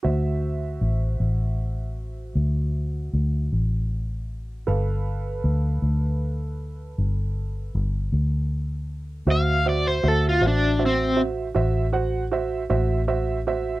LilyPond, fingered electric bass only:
\new Staff \with { instrumentName = "Fingered electric bass" } { \clef bass \time 12/8 \key d \mixolydian \tempo 4. = 52 d,4 a,,8 a,,4. d,4 d,8 a,,4. | g,,4 d,8 d,4. g,,4 g,,8 d,4. | d,4 d,8 a,,4. a,,4. a,,4. | }